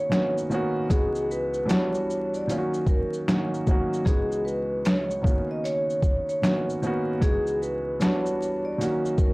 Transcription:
Already playing: felt piano D#3 A#3 B3 C#4 F#4, vibraphone C#5
0.10 felt piano D#3 A#3 B3 C#4, snare, closed hi-hat, shaker
0.14 felt piano F#4
0.38 shaker
0.50 felt piano D#3 A#3 B3 C#4, shaker
0.54 felt piano F#4
0.88 felt piano C#2 E3 G#3 B3 D#4, vibraphone G#4, kick, closed hi-hat, shaker
0.93 felt piano F#4
1.15 shaker
1.31 vibraphone B4, shaker
1.54 shaker
1.65 felt piano E3 G3 B3 D4 F#4, closed hi-hat, shaker
1.71 vibraphone C#5, snare
1.95 shaker
2.10 shaker
2.34 vibraphone D5, shaker
2.47 felt piano D#3 F#3 A#3 C#4, closed hi-hat, shaker
2.52 felt piano F4
2.58 felt piano F#4
2.74 shaker
2.87 vibraphone A#4, kick, shaker
3.13 shaker
3.28 felt piano D#3 F#3 A#3 C#4, snare, closed hi-hat, shaker
3.32 felt piano F#4
3.54 shaker
3.67 felt piano D#3 F#3 A#3 C#4, kick, shaker
3.71 felt piano F#4
3.93 shaker
4.05 felt piano C#2 E3 G#3 B3 D#4 F#4, vibraphone G#4, kick, closed hi-hat, shaker
4.32 shaker
4.45 vibraphone B4, shaker
4.85 vibraphone C#5, finger snap, snare, closed hi-hat, shaker
5.11 shaker
5.21 felt piano C#3 A#3 B3 C#4, kick
5.26 felt piano D#3 F#4, shaker
5.51 vibraphone D#5
5.64 vibraphone C#5, closed hi-hat, shaker
5.90 shaker
6.02 kick, shaker
6.29 vibraphone C#5, shaker
6.42 felt piano D#3 A#3 B3 C#4, finger snap, snare, closed hi-hat, shaker
6.46 felt piano F#4
6.69 shaker
6.82 felt piano D#3 A#3 B3 C#4, shaker
6.86 felt piano F#4
7.20 felt piano C#2 E3 G#3 B3 D#4, vibraphone G#4, kick, closed hi-hat, shaker
7.24 felt piano F#4
7.47 shaker
7.62 vibraphone B4, shaker
8.00 felt piano E3 G3 B3 D4, vibraphone C#5, finger snap, snare, closed hi-hat, shaker
8.04 felt piano F#4
8.26 shaker
8.42 shaker
8.65 vibraphone D5
8.78 felt piano D#3 F#3 A#3 C#4, closed hi-hat, shaker
8.82 felt piano F#4
9.05 shaker
9.18 vibraphone A#4, kick, shaker

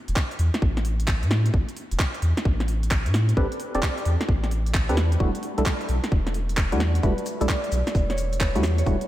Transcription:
0.08 sub bass E1, closed hi-hat
0.16 kick, clap
0.31 closed hi-hat
0.39 sub bass E2, open hi-hat
0.54 snare, closed hi-hat
0.62 sub bass A1, kick
0.77 snare, closed hi-hat
0.85 open hi-hat
1.00 closed hi-hat
1.08 kick, clap
1.23 sub bass A2, closed hi-hat
1.31 snare, open hi-hat
1.46 closed hi-hat
1.54 sub bass A1, kick
1.69 closed hi-hat
1.77 open hi-hat
1.91 sub bass E1, closed hi-hat
1.99 kick, clap
2.14 closed hi-hat
2.22 sub bass E2, open hi-hat
2.37 snare, closed hi-hat
2.45 sub bass A1, kick
2.60 snare, closed hi-hat
2.68 open hi-hat
2.83 closed hi-hat
2.91 kick, clap
3.06 sub bass A2, closed hi-hat
3.14 snare, open hi-hat
3.29 closed hi-hat
3.37 sub bass A1, synth stab C4 D4 G4 A4 B4, kick
3.52 closed hi-hat
3.60 open hi-hat
3.75 sub bass E1, synth stab C4 D4 G4 A4 D5, closed hi-hat
3.83 kick, clap
3.98 closed hi-hat
4.05 sub bass E2, open hi-hat
4.21 snare, closed hi-hat
4.29 sub bass A1, kick
4.44 snare, closed hi-hat
4.51 open hi-hat
4.66 closed hi-hat
4.74 kick, clap
4.89 sub bass E2, synth stab C4 D4 G4 A4 B4, closed hi-hat
4.97 snare, open hi-hat
5.12 closed hi-hat
5.20 sub bass E1, synth stab G3 A3 D4 E4 F#4, kick
5.35 closed hi-hat
5.43 open hi-hat
5.58 sub bass B1, synth stab G3 A3 D4 E4 A4, closed hi-hat
5.66 kick, clap
5.81 closed hi-hat
5.89 sub bass B1, open hi-hat
6.04 snare, closed hi-hat
6.12 sub bass E1, kick
6.27 snare, closed hi-hat
6.34 open hi-hat
6.49 closed hi-hat
6.57 kick, clap
6.72 sub bass E2, synth stab G3 A3 D4 E4 F#4, closed hi-hat
6.80 snare, open hi-hat
6.95 closed hi-hat
7.03 sub bass E1, synth stab G3 A3 D4 E4 F#4, harp B4, kick, shaker
7.18 closed hi-hat
7.26 open hi-hat, shaker
7.41 sub bass B1, synth stab G3 A3 D4 E4 A4, harp D5, closed hi-hat, shaker
7.49 kick, clap, shaker
7.64 closed hi-hat
7.72 sub bass B1, open hi-hat, shaker
7.87 snare, closed hi-hat, shaker
7.95 sub bass E1, kick, shaker
8.10 harp C#5, snare, closed hi-hat
8.18 open hi-hat, shaker
8.33 closed hi-hat, shaker
8.41 harp B4, kick, clap, shaker
8.55 sub bass E2, synth stab G3 A3 D4 E4 F#4, closed hi-hat
8.63 snare, open hi-hat, shaker
8.78 harp C#5, closed hi-hat, shaker
8.86 sub bass E1, synth stab G3 A3 D4 E4 F#4, kick, shaker
9.01 closed hi-hat

